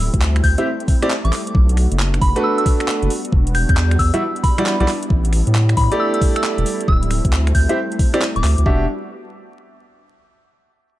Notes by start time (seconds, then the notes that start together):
Already playing: G3 A3 C4 E4
0.14 D2, kick, closed hi-hat
0.21 clap
0.36 finger snap, closed hi-hat
0.44 D2 G6, kick, open hi-hat
0.58 C4 E4 G4 E5, closed hi-hat
0.80 closed hi-hat
0.88 kick, open hi-hat
1.02 C4 E4 G4 D5, finger snap, closed hi-hat
1.10 clap
1.24 A1 D6, closed hi-hat
1.33 clap, open hi-hat
1.47 closed hi-hat
1.55 B1 B3 D4 F#4, kick
1.69 closed hi-hat
1.77 finger snap, open hi-hat
1.91 F#1, closed hi-hat
1.99 clap
2.14 finger snap, closed hi-hat
2.21 F#1 B5, kick, open hi-hat
2.36 A3 D4 F#4 B4, closed hi-hat
2.44 E6
2.58 E6, closed hi-hat
2.66 kick, open hi-hat
2.80 finger snap, closed hi-hat
2.88 clap
3.02 F#1, closed hi-hat
3.10 G3, open hi-hat
3.25 closed hi-hat
3.33 E1, kick
3.47 closed hi-hat
3.55 G6, finger snap, open hi-hat
3.69 E2 G6, kick, closed hi-hat
3.77 clap
3.91 finger snap, closed hi-hat
3.99 E2 E6, kick, open hi-hat
4.14 G3 E4 F#4 E5, closed hi-hat
4.36 closed hi-hat
4.43 B5, kick, open hi-hat
4.58 G3 E4 F#4 D5, finger snap, closed hi-hat
4.66 clap
4.80 B1 G3 E4 F#4 D5, closed hi-hat
4.88 G3 E4, clap, open hi-hat
5.03 closed hi-hat
5.10 A1, kick
5.25 closed hi-hat
5.33 finger snap, open hi-hat
5.47 A2, closed hi-hat
5.55 clap
5.69 finger snap, closed hi-hat
5.77 A2 B5, kick, open hi-hat
5.91 A3 E4 G4 D5, closed hi-hat
6.00 E6
6.14 E6, closed hi-hat
6.21 kick, open hi-hat
6.36 E6, finger snap, closed hi-hat
6.44 clap
6.58 E1, closed hi-hat
6.66 open hi-hat
6.81 closed hi-hat
6.88 D1 A3 C4 E6, kick
7.03 closed hi-hat
7.11 finger snap, open hi-hat
7.25 D2, kick, closed hi-hat
7.33 clap
7.47 finger snap, closed hi-hat
7.55 D2 G6, kick, open hi-hat
7.69 C4 E4 G4 E5, closed hi-hat
7.92 closed hi-hat
7.99 kick, open hi-hat
8.14 C4 E4 G4 D5, finger snap, closed hi-hat
8.22 clap
8.36 D1 D6, closed hi-hat
8.44 D2, clap, open hi-hat
8.58 D2, closed hi-hat
8.66 E1 G3 B3 D4 F#4 G4 E5, kick